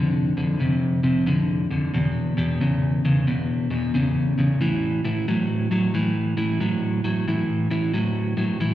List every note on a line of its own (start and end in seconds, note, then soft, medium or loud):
0.00 0.32 F2 medium
0.00 0.33 D3 medium
0.37 0.58 F2 medium
0.37 0.58 D3 medium
0.60 0.99 F2 medium
0.60 0.99 C3 medium
1.03 1.25 F2 medium
1.03 1.25 C3 medium
1.27 1.66 F2 medium
1.27 1.66 D3 medium
1.71 1.92 F2 medium
1.71 1.92 D3 medium
1.94 2.33 E2 medium
1.94 2.33 B2 medium
2.37 2.58 E2 medium
2.37 2.59 B2 medium
2.61 3.00 E2 medium
2.61 3.00 C#3 medium
3.05 3.25 E2 medium
3.05 3.26 C#3 medium
3.27 3.66 E2 medium
3.27 3.67 B2 medium
3.70 3.92 E2 medium
3.70 3.92 B2 medium
3.94 4.33 E2 medium
3.94 4.34 C#3 medium
4.38 4.59 E2 medium
4.38 4.59 C#3 medium
4.61 5.00 A2 medium
4.61 5.00 E3 medium
5.05 5.25 A2 medium
5.05 5.26 E3 medium
5.28 5.67 A2 medium
5.28 5.67 F#3 medium
5.71 5.92 A2 medium
5.71 5.92 F#3 medium
5.94 6.33 A2 medium
5.94 6.34 E3 medium
6.37 6.58 A2 medium
6.37 6.59 E3 medium
6.60 7.00 A2 medium
6.60 7.00 F#3 medium
7.04 7.25 A2 medium
7.04 7.25 F#3 medium
7.28 7.67 A2 medium
7.28 7.67 E3 medium
7.71 7.92 A2 medium
7.71 7.92 E3 medium
7.94 8.33 A2 medium
7.94 8.33 F#3 medium
8.37 8.58 A2 medium
8.37 8.58 F#3 medium
8.60 8.74 A2 medium
8.60 8.74 E3 medium